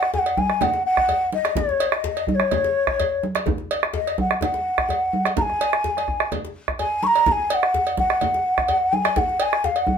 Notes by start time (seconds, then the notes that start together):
Already playing: F#5
0.03 bombo rim
0.14 G#5, djembe slap, djembe bass
0.19 F#5
0.26 cowbell
0.37 G#5, bombo low, high conga
0.50 bombo rim
0.61 F#5, cowbell, djembe slap, high conga, low conga, djembe bass
0.74 djembe slap, djembe tone, high conga
0.86 F#5
0.97 bombo rim, bombo low
1.08 cowbell, djembe slap, high conga, djembe bass
1.32 D#5, djembe slap, high conga
1.45 bombo rim, cowbell, djembe slap
1.55 C#5, bombo low, djembe bass, low conga
1.69 djembe slap, djembe tone
1.80 cowbell
1.92 D#5, bombo rim
2.04 djembe slap, djembe bass
2.17 cowbell
2.27 D#5, bombo low, high conga
2.35 C#5
2.40 bombo rim
2.51 cowbell, djembe slap, high conga, low conga, djembe bass
2.64 djembe slap, djembe tone, high conga
2.87 bombo rim, bombo low
3.00 cowbell, djembe slap, high conga, djembe bass
3.23 djembe slap, high conga
3.35 bombo rim, cowbell, djembe slap
3.46 bombo low, djembe bass, low conga
3.58 djembe tone
3.71 cowbell
3.83 bombo rim
3.94 D#5, djembe slap, djembe bass
4.07 cowbell
4.18 F#5, bombo low, high conga
4.31 bombo rim
4.41 F#5, cowbell, djembe slap, high conga, djembe bass, low conga
4.54 djembe slap, djembe tone, high conga
4.78 bombo rim, bombo low
4.89 cowbell, djembe slap, high conga, djembe bass
5.13 djembe slap, high conga
5.25 bombo rim, cowbell, djembe slap
5.37 A#5, bombo low, low conga, djembe bass
5.42 G#5
5.50 bombo rim, djembe tone, high conga
5.61 bombo rim, cowbell, high conga
5.73 bombo rim
5.84 djembe slap, djembe bass
5.97 bombo rim, cowbell, high conga
6.08 bombo rim, bombo low
6.20 bombo rim, djembe slap
6.32 cowbell, high conga, low conga, djembe bass
6.45 djembe slap, djembe tone
6.56 djembe slap
6.68 bombo rim, bombo low
6.79 G#5, cowbell, djembe slap, djembe bass
7.03 C#6, high conga
7.07 A#5
7.15 cowbell, djembe slap
7.26 A#5, bombo low, low conga, djembe bass
7.32 G#5
7.40 djembe slap, djembe tone
7.50 G#5, cowbell
7.55 F#5
7.63 bombo rim
7.74 djembe slap, djembe bass
7.87 cowbell
7.97 F#5, bombo low, high conga
8.10 bombo rim
8.21 cowbell, djembe slap, high conga, low conga, djembe bass
8.34 djembe slap, high conga, djembe tone
8.58 bombo rim, bombo low
8.68 cowbell, djembe slap, high conga, djembe bass
8.93 G#5, djembe slap, high conga
9.05 bombo rim, cowbell, djembe slap
9.16 F#5, bombo low, low conga, djembe bass
9.29 djembe slap, djembe tone
9.40 G#5, cowbell
9.53 bombo rim
9.64 F5, djembe slap, djembe bass
9.76 F#5, cowbell
9.87 bombo low, high conga